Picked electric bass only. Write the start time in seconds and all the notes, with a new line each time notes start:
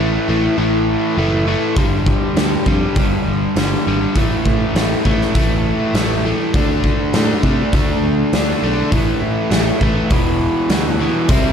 0.00 A1
0.29 A1
0.58 A1
1.17 F#1
1.77 G1
2.37 D2
2.66 F2
2.96 G1
3.27 G1
3.56 G1
3.87 G#1
4.16 A1
4.45 A2
4.75 A1
5.05 A1
5.35 A1
5.94 A1
6.54 D2
7.14 A2
7.43 C3
7.73 D2
8.04 D2
8.33 D2
8.62 B1
8.92 A1
9.22 A2
9.51 A1
9.81 A1
10.11 E1
10.70 D2
11.29 C2